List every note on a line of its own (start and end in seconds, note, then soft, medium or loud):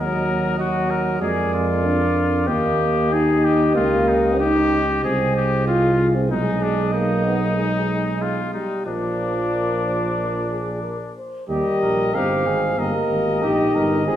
0.00 1.17 D#2 medium
0.00 0.58 F#3 medium
0.00 0.57 F#4 soft
0.00 0.58 A#4 medium
0.00 0.58 D#5 medium
0.58 1.22 F#3 medium
0.58 1.19 F#4 medium
0.58 0.92 F#4 medium
0.58 1.20 D#5 medium
0.91 1.21 A#4 medium
1.20 2.49 F2 medium
1.20 1.86 G#3 medium
1.20 1.52 G#4 medium
1.20 2.48 A#4 medium
1.20 2.48 D5 medium
1.54 2.49 F4 medium
1.85 2.49 D4 medium
2.47 3.78 D#2 medium
2.47 3.12 A#3 medium
2.47 5.06 G4 medium
2.47 3.15 G4 medium
2.47 6.13 D#5 medium
3.12 3.77 D#4 medium
3.12 3.46 G#4 medium
3.45 3.75 G4 medium
3.75 5.04 C#2 medium
3.75 4.42 A#3 medium
3.75 4.10 F4 medium
4.08 4.40 D#4 medium
4.40 4.82 D#4 medium
4.40 5.03 G4 medium
5.04 6.32 C2 medium
5.04 5.63 C4 medium
5.04 5.35 G#4 medium
5.04 8.57 G#4 medium
5.36 5.67 G4 medium
5.67 6.16 F4 medium
5.67 6.07 F4 medium
6.15 6.31 C4 medium
6.30 8.57 B1 medium
6.30 6.92 G#3 medium
6.30 6.64 D#4 medium
6.30 8.54 D#5 medium
6.62 6.93 D4 medium
6.93 7.24 A#3 medium
6.93 8.23 D#4 medium
7.26 7.41 B3 medium
7.42 7.57 A#3 medium
7.56 8.53 G#3 medium
8.22 8.53 F4 medium
8.53 8.86 G3 medium
8.53 8.86 D#4 soft
8.86 11.12 A#1 medium
8.86 10.79 F3 medium
8.86 11.12 D4 medium
8.86 9.42 A#4 soft
8.86 11.12 D5 soft
9.52 9.83 A#4 medium
9.85 10.17 C5 soft
10.17 10.50 A#4 soft
10.50 10.83 G#4 soft
10.83 10.98 A#4 soft
11.16 11.48 C5 soft
11.48 11.63 D#2 medium
11.48 12.11 G3 medium
11.48 11.80 G4 medium
11.48 12.15 A#4 medium
11.48 12.16 D#5 medium
11.81 12.16 A#1 medium
11.81 12.16 A#4 medium
12.14 12.46 G1 medium
12.14 12.80 C4 medium
12.14 12.77 D#4 medium
12.14 12.48 G4 medium
12.14 12.80 F5 medium
12.46 12.77 G#1 medium
12.46 12.77 G#4 medium
12.78 12.92 G1 medium
12.78 13.45 A#3 medium
12.78 14.03 G4 medium
12.78 13.43 A#4 medium
12.78 14.16 D#5 medium
13.10 13.45 G#1 medium
13.42 13.74 A#1 medium
13.42 14.05 D#4 medium
13.42 13.76 G4 medium
13.75 14.07 G1 medium
13.75 14.06 A#4 medium
14.06 14.16 G#1 medium
14.06 14.16 C4 medium
14.06 14.16 F4 medium
14.06 14.16 G#4 medium